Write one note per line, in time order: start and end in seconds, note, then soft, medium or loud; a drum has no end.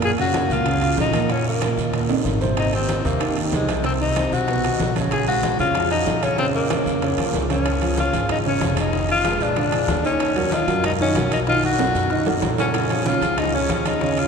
0.00 0.44 F#2 medium
0.00 0.13 A#2 medium
0.00 0.13 A#3 medium
0.00 0.13 A#4 medium
0.00 high bongo medium
0.00 high conga soft
0.00 high timbale medium
0.00 long guiro medium
0.04 0.11 G#4 loud
0.18 0.45 C#3 medium
0.18 0.44 C#4 medium
0.18 0.53 F#4 loud
0.18 0.45 F5 medium
0.18 high conga soft
0.18 high timbale medium
0.34 high bongo medium
0.34 high conga medium
0.34 high timbale medium
0.34 low timbale medium
0.34 short guiro medium
0.50 0.94 C#2 medium
0.50 0.63 A#2 medium
0.50 0.63 A#3 medium
0.50 0.99 F4 loud
0.50 0.63 A#4 medium
0.50 high bongo soft
0.50 high conga soft
0.50 short guiro medium
0.66 0.79 C#3 medium
0.66 0.79 C#4 medium
0.66 0.79 F4 medium
0.66 high bongo medium
0.66 high conga soft
0.66 high timbale medium
0.66 long guiro medium
0.81 1.08 C#3 medium
0.81 1.08 C#4 medium
0.81 1.08 F4 medium
0.81 high bongo soft
0.81 high conga soft
0.81 high timbale medium
0.97 1.72 A#1 medium
0.97 1.33 D#4 loud
0.97 high bongo soft
0.97 low bongo medium
0.97 high conga medium
0.97 low timbale medium
0.97 short guiro medium
1.13 1.26 A#2 medium
1.13 1.26 A#3 medium
1.13 1.27 A#4 medium
1.13 high bongo soft
1.13 high conga medium
1.13 high timbale loud
1.13 short guiro medium
1.29 1.56 A#2 medium
1.29 1.56 A#3 medium
1.29 1.47 C#4 medium
1.29 1.56 A#4 medium
1.29 high bongo medium
1.29 high timbale medium
1.29 long guiro medium
1.46 1.91 A#3 medium
1.46 high conga soft
1.62 1.88 A#2 medium
1.62 1.88 A#3 medium
1.62 1.88 A#4 medium
1.62 high bongo medium
1.62 high conga medium
1.62 high timbale medium
1.62 low timbale medium
1.62 short guiro medium
1.77 2.07 D#2 medium
1.77 high bongo soft
1.77 high conga soft
1.77 short guiro medium
1.93 2.06 A#2 medium
1.93 2.07 A#3 medium
1.93 2.07 A#4 medium
1.93 high bongo medium
1.93 high conga soft
1.93 high timbale medium
1.93 long guiro medium
2.09 2.24 A#1 medium
2.09 2.36 C#3 medium
2.09 2.36 C#4 medium
2.09 2.36 D#4 medium
2.09 high bongo soft
2.09 high conga soft
2.09 high timbale loud
2.25 2.99 G#1 medium
2.25 high bongo soft
2.25 low bongo medium
2.25 high conga medium
2.25 short guiro medium
2.41 2.67 C3 medium
2.41 2.67 C4 medium
2.41 2.68 C5 medium
2.41 high bongo soft
2.41 high conga medium
2.41 low timbale medium
2.41 short guiro medium
2.57 2.73 D#4 medium
2.57 high bongo medium
2.57 high conga soft
2.57 high timbale medium
2.57 long guiro medium
2.73 2.99 D#3 medium
2.73 3.08 C4 medium
2.73 2.99 D#4 medium
2.73 2.99 G4 medium
2.73 high conga soft
2.73 high timbale medium
2.89 high bongo medium
2.89 high conga medium
2.89 high timbale medium
2.89 low timbale medium
2.89 short guiro medium
3.05 3.49 D#2 medium
3.05 3.18 C3 medium
3.05 3.38 A#3 medium
3.05 3.18 C4 medium
3.05 3.18 C5 medium
3.05 high bongo soft
3.05 high conga soft
3.05 short guiro medium
3.20 3.33 D#3 medium
3.20 3.34 D#4 medium
3.20 3.34 G4 medium
3.20 high bongo medium
3.20 high conga soft
3.20 high timbale medium
3.20 long guiro medium
3.37 3.63 D#3 medium
3.37 3.63 D#4 medium
3.37 3.63 G4 medium
3.37 high bongo soft
3.37 high conga soft
3.37 high timbale medium
3.52 4.26 C2 medium
3.52 3.83 G#3 medium
3.52 high bongo soft
3.52 low bongo medium
3.52 high conga medium
3.52 low timbale medium
3.52 short guiro medium
3.68 3.81 C3 medium
3.68 3.82 C4 medium
3.68 3.82 C5 medium
3.68 high bongo soft
3.68 high conga medium
3.68 high timbale medium
3.68 short guiro medium
3.84 4.10 C3 medium
3.84 4.10 C4 medium
3.84 3.92 C4 medium
3.84 4.10 C5 medium
3.84 high bongo medium
3.84 high conga soft
3.84 high timbale medium
3.84 long guiro medium
4.01 4.34 D#4 medium
4.01 high conga soft
4.16 4.42 C3 medium
4.16 4.42 C4 medium
4.16 4.43 C5 medium
4.16 high bongo medium
4.16 high conga medium
4.16 high timbale medium
4.16 low timbale medium
4.16 short guiro medium
4.32 4.76 B1 medium
4.32 4.96 F#4 loud
4.32 high bongo soft
4.32 high conga soft
4.32 short guiro medium
4.48 4.61 B2 medium
4.48 4.61 B3 medium
4.48 4.61 B4 medium
4.48 high bongo medium
4.48 high conga soft
4.48 high timbale medium
4.48 long guiro medium
4.64 4.90 D#3 medium
4.64 4.90 D#4 medium
4.64 4.90 F#4 medium
4.64 high bongo soft
4.64 high conga soft
4.64 high timbale medium
4.79 5.53 A#1 medium
4.79 high bongo soft
4.79 low bongo medium
4.79 high conga medium
4.79 low timbale medium
4.79 short guiro medium
4.96 5.22 C#3 medium
4.96 5.22 C#4 medium
4.96 5.22 C#5 medium
4.96 high bongo soft
4.96 high conga medium
4.96 high timbale medium
4.96 short guiro medium
5.11 5.27 G#4 loud
5.11 high bongo medium
5.11 high conga soft
5.11 high timbale medium
5.11 long guiro medium
5.27 5.54 G#3 medium
5.27 5.57 F#4 loud
5.27 5.54 G#4 medium
5.27 5.54 F5 medium
5.27 high conga soft
5.27 high timbale medium
5.43 high bongo medium
5.43 high conga medium
5.43 high timbale medium
5.43 low timbale medium
5.43 short guiro medium
5.59 6.03 F2 medium
5.59 5.72 C#3 medium
5.59 5.73 C#4 medium
5.59 5.89 F4 medium
5.59 5.73 C#5 medium
5.59 high bongo soft
5.59 high conga soft
5.59 short guiro medium
5.75 5.88 F3 medium
5.75 5.88 F4 medium
5.75 5.89 G#4 medium
5.75 high bongo medium
5.75 high conga soft
5.75 high timbale medium
5.75 long guiro medium
5.91 6.17 F3 medium
5.91 6.25 D#4 medium
5.91 6.17 F4 medium
5.91 6.17 G#4 medium
5.91 high bongo soft
5.91 high conga soft
5.91 high timbale medium
6.07 6.81 A#1 medium
6.07 high bongo soft
6.07 low bongo medium
6.07 high conga medium
6.07 low timbale medium
6.07 short guiro medium
6.23 6.36 C#3 medium
6.23 6.36 C#4 medium
6.23 6.38 C#4 medium
6.23 6.36 C#5 medium
6.23 high bongo soft
6.23 high conga medium
6.23 high timbale medium
6.23 short guiro medium
6.38 6.65 C#3 medium
6.38 6.46 C4 loud
6.38 6.65 C#4 medium
6.38 6.65 C#5 medium
6.38 high bongo medium
6.38 high conga soft
6.38 high timbale medium
6.38 long guiro medium
6.54 7.46 A#3 medium
6.54 high conga soft
6.70 6.96 C#3 medium
6.70 6.97 C#4 medium
6.70 6.97 C#5 medium
6.70 high bongo medium
6.70 high conga medium
6.70 high timbale medium
6.70 low timbale medium
6.70 short guiro medium
6.86 7.16 F2 medium
6.86 high bongo soft
6.86 high conga soft
6.86 short guiro medium
7.02 7.16 C#3 medium
7.02 7.16 C#4 medium
7.02 7.16 C#5 medium
7.02 high bongo medium
7.02 high conga soft
7.02 high timbale medium
7.02 long guiro medium
7.18 7.33 D#2 medium
7.18 7.44 F3 medium
7.18 7.45 F4 medium
7.18 7.45 G#4 medium
7.18 high bongo soft
7.18 high conga soft
7.18 high timbale medium
7.33 8.08 C#2 medium
7.33 high bongo soft
7.33 low bongo medium
7.33 high conga medium
7.33 low timbale medium
7.33 short guiro medium
7.50 7.63 C#3 medium
7.50 7.63 C#4 medium
7.50 7.95 C#4 medium
7.50 7.63 C#5 medium
7.50 high bongo soft
7.50 high conga medium
7.50 high timbale medium
7.50 short guiro medium
7.66 high bongo medium
7.66 high conga soft
7.66 high timbale medium
7.66 long guiro medium
7.82 7.95 F3 medium
7.82 7.95 F4 medium
7.82 7.95 G#4 medium
7.82 high bongo soft
7.82 high conga soft
7.82 high timbale medium
7.97 8.11 C#3 medium
7.97 8.11 C#4 medium
7.97 8.28 F4 medium
7.97 8.11 C#5 medium
7.97 high bongo medium
7.97 high conga medium
7.97 short guiro medium
8.13 8.58 G#1 medium
8.13 8.40 F3 medium
8.13 8.40 F4 medium
8.13 8.40 G#4 medium
8.13 high bongo soft
8.13 high conga soft
8.13 high timbale medium
8.13 short guiro medium
8.29 8.38 D#4 medium
8.29 high bongo medium
8.29 high conga soft
8.29 low conga medium
8.29 high timbale loud
8.29 long guiro medium
8.45 8.59 C#3 medium
8.45 8.59 C#4 medium
8.45 8.76 C#4 medium
8.45 8.59 C#5 medium
8.45 high bongo soft
8.45 high conga soft
8.45 low conga medium
8.61 9.35 F1 medium
8.61 8.88 F3 medium
8.61 8.88 F4 medium
8.61 8.88 G#4 medium
8.61 high bongo medium
8.61 low bongo medium
8.61 high conga medium
8.61 high timbale medium
8.61 low timbale medium
8.61 short guiro medium
8.77 9.08 D#4 medium
8.77 high conga medium
8.77 high timbale loud
8.77 short guiro medium
8.93 9.19 D#3 medium
8.93 9.19 D#4 medium
8.93 9.19 D#5 medium
8.93 high bongo medium
8.93 high conga soft
8.93 long guiro medium
9.09 9.44 F4 loud
9.09 high conga soft
9.09 high timbale medium
9.24 9.51 G#3 medium
9.24 9.51 G#4 medium
9.24 9.51 B4 medium
9.24 high bongo medium
9.24 high conga medium
9.24 high timbale medium
9.24 short guiro medium
9.40 9.85 A#1 medium
9.40 10.05 D4 loud
9.40 high bongo soft
9.40 high conga soft
9.40 short guiro medium
9.56 9.69 D3 medium
9.56 9.70 D4 medium
9.56 9.70 D5 medium
9.56 high bongo medium
9.56 high conga soft
9.56 high timbale medium
9.56 long guiro medium
9.72 9.98 F3 medium
9.72 9.99 F4 medium
9.72 9.99 G#4 medium
9.72 high bongo soft
9.72 high conga soft
9.72 high timbale loud
9.88 10.62 D#2 medium
9.88 high bongo medium
9.88 low bongo medium
9.88 high conga medium
9.88 high timbale medium
9.88 low timbale medium
9.88 short guiro medium
10.04 10.30 D#3 medium
10.04 10.55 C#4 medium
10.04 10.30 D#4 medium
10.04 10.30 D#5 medium
10.04 high bongo soft
10.04 high conga soft
10.04 short guiro medium
10.20 high bongo medium
10.20 high conga soft
10.20 high timbale medium
10.20 long guiro medium
10.36 10.49 F#3 medium
10.36 10.49 F#4 medium
10.36 10.49 A#4 medium
10.36 high bongo soft
10.36 high conga soft
10.36 high timbale medium
10.52 10.65 D#3 medium
10.52 10.65 D#4 medium
10.52 10.84 F4 loud
10.52 10.65 D#5 medium
10.52 high bongo medium
10.52 high conga loud
10.52 short guiro medium
10.67 11.12 F#2 medium
10.67 10.94 F#3 medium
10.67 10.94 F#4 medium
10.67 10.94 A#4 medium
10.67 high bongo soft
10.67 high conga soft
10.67 high timbale medium
10.67 short guiro medium
10.84 10.92 D#4 loud
10.84 high bongo medium
10.84 high conga soft
10.84 low conga medium
10.84 high timbale loud
10.84 long guiro medium
10.99 11.13 D#3 medium
10.99 11.30 C#4 loud
10.99 11.13 D#4 medium
10.99 11.13 D#5 medium
10.99 high bongo soft
10.99 high conga soft
10.99 low conga medium
11.15 11.89 B1 medium
11.15 11.41 F#3 medium
11.15 11.42 F#4 medium
11.15 11.42 A#4 medium
11.15 high bongo medium
11.15 low bongo medium
11.15 high conga medium
11.15 high timbale medium
11.15 short guiro medium
11.32 11.40 D#4 medium
11.32 high conga medium
11.32 high timbale loud
11.32 short guiro medium
11.47 11.73 D#3 medium
11.47 11.73 D#4 medium
11.47 11.63 F4 loud
11.47 11.73 D#5 medium
11.47 high bongo medium
11.47 high conga soft
11.47 long guiro medium
11.63 12.28 F#4 loud
11.63 high conga soft
11.63 high timbale medium
11.79 12.05 F#3 medium
11.79 12.05 F#4 medium
11.79 12.05 A4 medium
11.79 high bongo medium
11.79 high conga medium
11.79 high timbale medium
11.79 short guiro medium
11.94 12.39 F#2 medium
11.94 high bongo soft
11.94 high conga soft
11.94 short guiro medium
12.10 12.24 D#3 medium
12.10 12.24 D#4 medium
12.10 12.24 D#5 medium
12.10 high bongo medium
12.10 high conga soft
12.10 long guiro medium
12.26 12.52 F#3 medium
12.26 12.52 F#4 medium
12.26 12.53 A4 medium
12.26 high bongo soft
12.26 high conga soft
12.26 low timbale loud
12.42 13.16 A#1 medium
12.42 high bongo medium
12.42 low bongo medium
12.42 high conga medium
12.42 low timbale loud
12.42 short guiro medium
12.58 12.84 C#3 medium
12.58 12.84 C#4 medium
12.58 13.08 C#4 medium
12.58 12.85 C#5 medium
12.58 high bongo soft
12.58 low timbale loud
12.58 short guiro medium
12.74 high bongo medium
12.74 high conga soft
12.74 high timbale loud
12.74 long guiro medium
12.90 13.03 F3 medium
12.90 13.03 F4 medium
12.90 13.03 G#4 medium
12.90 high bongo soft
12.90 high conga soft
12.90 high timbale medium
13.05 13.18 C#3 medium
13.05 13.19 C#4 medium
13.05 13.40 F4 loud
13.05 13.19 C#5 medium
13.05 high bongo medium
13.05 high conga loud
13.05 short guiro medium
13.21 13.66 C#2 medium
13.21 13.47 F3 medium
13.21 13.48 F4 medium
13.21 13.48 G#4 medium
13.21 high bongo soft
13.21 high conga soft
13.21 high timbale medium
13.21 short guiro medium
13.38 13.54 D#4 loud
13.38 high bongo medium
13.38 high conga soft
13.38 low conga medium
13.38 high timbale loud
13.38 long guiro medium
13.53 13.66 C#3 medium
13.53 13.67 C#4 medium
13.53 13.89 C#4 medium
13.53 13.67 C#5 medium
13.53 high bongo soft
13.53 high conga soft
13.53 low conga medium
13.69 14.28 D#2 medium
13.69 13.95 F3 medium
13.69 13.96 F4 medium
13.69 13.96 G#4 medium
13.69 high bongo medium
13.69 low bongo medium
13.69 high conga medium
13.69 high timbale medium
13.69 short guiro medium
13.85 14.20 D#4 medium
13.85 high conga medium
13.85 high timbale medium
13.85 short guiro medium
14.01 14.27 C#3 medium
14.01 14.28 C#4 medium
14.01 14.28 C#5 medium
14.01 high bongo medium
14.01 high conga soft
14.01 long guiro medium
14.17 14.28 F4 loud
14.17 high conga soft
14.17 high timbale medium